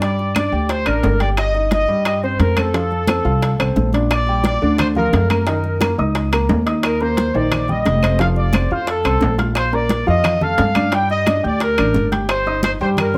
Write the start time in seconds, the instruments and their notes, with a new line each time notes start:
Already playing: upright bass G2
0.01 grand piano G3 G4, trumpet section D5, high bongo, high conga, high timbale
0.19 high bongo, high conga
0.35 grand piano D4 D5, trumpet section D5, high bongo, high conga, high timbale, claves
0.52 upright bass D2, grand piano G4 G5, high conga
0.69 trumpet section C5, high bongo, high conga, high timbale
0.86 upright bass A1, grand piano D4 D5, trumpet section A#4, high bongo, high conga, high timbale, claves
1.03 upright bass G1, high bongo, low bongo, high conga, low timbale
1.20 grand piano G4 G5, trumpet section D5, high bongo, high conga, high timbale
1.37 trumpet section D#5, high bongo, high conga, high timbale, claves
1.54 grand piano D#4 D#5, high bongo, high conga
1.71 trumpet section D#5, high bongo, high conga, high timbale
1.88 upright bass G2, grand piano G3 G4, high conga
2.05 trumpet section D#5, high bongo, high conga, high timbale, claves
2.23 grand piano C4 C5, trumpet section C5, high bongo, high conga
2.39 upright bass F2, trumpet section A#4, high bongo, low bongo, high conga, high timbale
2.57 grand piano C4 C5, trumpet section A4, high bongo, high conga, high timbale, claves
2.74 grand piano F3 F4, high bongo, high conga, high timbale
2.91 high bongo, high conga
3.07 grand piano C4 C5, high bongo, high conga, high timbale, claves
3.25 upright bass C2, grand piano F4 F5, high conga
3.42 high bongo, high conga, high timbale
3.58 upright bass C2, grand piano C4 C5, high bongo, high conga, high timbale, claves
3.76 upright bass A#1, high bongo, low bongo, high conga
3.93 grand piano D4 D5, high bongo, high conga, high timbale
4.10 trumpet section D5, high bongo, high conga, high timbale, claves
4.27 grand piano G3 G4 G5, high bongo, high conga
4.44 trumpet section D5, high bongo, high conga, high timbale
4.62 upright bass D2, grand piano D3 D4 D5, high conga
4.78 trumpet section C5, high bongo, high conga, low conga, high timbale, claves
4.95 grand piano F3 F4 F5, trumpet section A#4, high bongo, high conga, low conga
5.13 upright bass F#2, high bongo, low bongo, high conga, high timbale, low timbale
5.30 grand piano A#3 A#4 A#5, trumpet section A#4, high bongo, high conga, high timbale, claves
5.47 grand piano D#3 D#4 D#5, high bongo, high timbale
5.64 high bongo, high conga
5.81 grand piano A#3 A#4 A#5, high bongo, high conga, high timbale, claves
5.98 upright bass C#2, grand piano D#4 D#5 D#6, high conga
6.15 high bongo, high conga, high timbale
6.32 grand piano A#3 A#4 A#5, high bongo, high conga, high timbale, claves
6.49 upright bass D#2, high bongo, low bongo, high conga, low timbale
6.66 grand piano D#4 D#5 D#6, high bongo, high timbale
6.83 trumpet section A#4, high bongo, high conga, high timbale, claves
7.00 grand piano A#3 A#4 A#5, trumpet section C5, high bongo, high conga
7.17 high bongo, high conga, high timbale
7.34 upright bass A#1, grand piano D#3 D#4 C5, trumpet section D5, high conga
7.52 high bongo, high conga, low conga, high timbale, claves
7.68 grand piano G3 G4 G5, trumpet section D#5, high bongo, high conga, low conga
7.86 upright bass F1, high bongo, low bongo, high conga, high timbale
8.03 grand piano C4 C5 C6, high bongo, high conga, high timbale, claves
8.19 grand piano F3 F4 F5, trumpet section F5, high bongo, high conga, high timbale
8.36 trumpet section D5, high bongo, high conga
8.53 grand piano C4 C5 C6, high bongo, high conga, high timbale, claves
8.71 upright bass F2, grand piano F4 F5 F6, trumpet section C5, high conga
8.87 trumpet section A4, high bongo, high conga, high timbale
9.03 upright bass C2, grand piano C4 C5 C6, high bongo, high conga, high timbale, claves
9.21 upright bass A#1, high bongo, low bongo, high conga, low timbale
9.38 grand piano F4 F5 F6, high bongo, high conga, high timbale
9.55 trumpet section C5, high bongo, high conga, high timbale, claves
9.72 grand piano A#3 A#4 A#5, trumpet section D5, high bongo, high conga
9.89 high bongo, high conga, high timbale
10.07 upright bass F2, grand piano F3 F4 F5, trumpet section D#5, high conga
10.24 high bongo, high conga, low conga, high timbale, claves
10.41 grand piano A3 A4 A5, trumpet section F5, high bongo, high conga, low conga
10.58 upright bass G2, high bongo, low bongo, high conga, high timbale, low timbale
10.75 grand piano D4 D5 D6, high bongo, high conga, high timbale, claves
10.92 grand piano G3 G4 G5, trumpet section G5, high bongo, high timbale
11.10 trumpet section D#5, high bongo, high conga
11.26 grand piano D4 D5 D6, high bongo, high conga, high timbale, claves
11.43 upright bass D2, grand piano G4 G5 G6, trumpet section D5, high conga
11.60 trumpet section A#4, high bongo, high conga, high timbale
11.78 upright bass A1, grand piano D4 D5 D6, high bongo, high conga, high timbale, claves
11.94 upright bass G1, high bongo, low bongo, high conga
12.12 grand piano G4 G5 G6, high bongo, high conga, high timbale
12.29 trumpet section C5, high bongo, high timbale, claves
12.46 grand piano D#4 D#5 D#6, high bongo, high conga
12.63 trumpet section C5, high bongo, high conga, high timbale
12.80 upright bass G2, grand piano G3 G4 G5, trumpet section C5, high conga
12.97 trumpet section A#4, high bongo, high conga, low conga, high timbale, claves
13.14 grand piano C4 C5, high conga, low conga